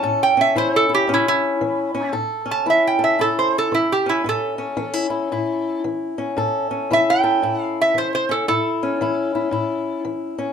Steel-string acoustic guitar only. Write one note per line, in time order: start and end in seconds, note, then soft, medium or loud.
0.00 0.52 A2 medium
0.00 0.37 C#4 medium
0.00 0.56 E4 medium
0.00 2.12 A4 medium
0.37 1.08 C#4 medium
0.55 1.05 E3 medium
0.55 0.88 E4 medium
0.89 2.12 E4 medium
1.07 1.57 A2 medium
1.07 1.93 C#4 medium
1.61 2.10 E3 medium
1.95 2.12 C#4 medium
2.12 2.62 A2 medium
2.12 2.98 A4 medium
2.46 4.06 C#4 medium
2.66 3.15 E3 medium
2.66 3.19 E4 medium
2.99 6.37 A4 medium
3.19 3.68 A2 medium
3.19 4.77 E4 medium
3.72 4.21 E3 medium
4.06 4.25 C#4 medium
4.24 4.74 A2 medium
4.24 4.58 C#4 medium
4.58 4.77 C#4 medium
4.77 5.26 E3 medium
4.77 4.93 C#4 medium
4.93 5.09 E4 soft
5.10 5.32 E4 medium
5.32 5.80 A2 medium
5.32 6.91 E4 medium
5.84 6.33 E3 medium
6.18 6.70 C#4 medium
6.37 6.85 A2 medium
6.37 7.23 A4 medium
6.71 8.28 C#4 medium
6.91 7.39 E3 medium
6.91 7.43 E4 medium
7.24 8.46 A4 medium
7.42 7.91 A2 medium
7.42 8.48 E4 medium
7.94 8.43 E3 medium
8.29 8.46 C#4 medium
8.48 8.97 A2 medium
8.48 9.01 E4 medium
8.83 10.37 C#4 medium
9.01 9.49 E3 medium
9.01 9.35 E4 medium
9.35 9.52 E4 medium
9.51 10.01 A2 medium
9.51 10.53 E4 medium
10.05 10.53 E3 medium
10.38 10.53 C#4 medium